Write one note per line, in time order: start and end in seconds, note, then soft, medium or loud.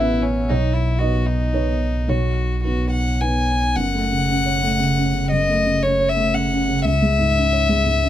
0.00 0.51 A1 medium
0.00 0.52 A2 medium
0.00 0.52 B3 medium
0.00 0.51 C#4 soft
0.00 0.24 E4 medium
0.00 0.51 B4 medium
0.00 0.52 E5 medium
0.00 0.52 F#5 medium
0.22 0.50 C#4 medium
0.49 3.76 B1 medium
0.49 0.99 B1 medium
0.49 0.75 D#4 medium
0.49 0.98 C#5 medium
0.74 1.00 E4 medium
0.99 1.49 B3 soft
0.99 1.50 D#4 soft
0.99 1.28 F#4 medium
0.99 1.50 B4 soft
0.99 1.50 D#5 medium
1.26 2.10 D#4 medium
1.53 2.04 B3 soft
1.53 2.04 D#4 soft
1.53 2.05 B4 soft
1.53 2.05 C#5 medium
2.08 2.62 B1 soft
2.08 2.59 F#4 soft
2.08 2.61 C#5 medium
2.64 3.16 B3 soft
2.64 3.16 D#4 soft
2.64 2.90 F#4 medium
2.64 3.17 B4 soft
2.91 3.22 F#5 medium
3.20 3.72 B3 soft
3.20 3.72 D#4 soft
3.20 3.73 B4 soft
3.20 3.77 G#5 medium
3.76 6.87 F#1 medium
3.76 5.28 F#2 medium
3.76 5.31 F#5 medium
3.94 4.22 A3 soft
4.11 4.39 C#3 soft
4.28 4.56 C#4 soft
4.46 4.73 C#5 soft
4.63 4.90 A3 soft
4.79 5.08 C#3 soft
4.97 5.25 C#4 soft
5.14 5.42 C#3 soft
5.31 6.81 F#2 medium
5.31 5.84 D#5 medium
5.49 5.76 A3 soft
5.66 5.93 C#3 soft
5.83 6.10 C#4 soft
5.83 6.10 C#5 medium
6.00 6.27 C#5 soft
6.09 6.36 E5 medium
6.16 6.44 A3 soft
6.33 6.61 C#3 soft
6.33 6.85 F#5 medium
6.51 6.79 C#4 soft
6.68 6.85 C#3 soft
6.85 8.09 C#2 medium
6.85 8.09 E5 medium
7.02 7.29 G#3 soft
7.19 7.46 G#2 soft
7.35 7.63 C#4 soft
7.53 7.80 C#5 soft
7.69 7.96 G#3 soft
7.85 8.09 G#2 soft
8.03 8.09 C#4 medium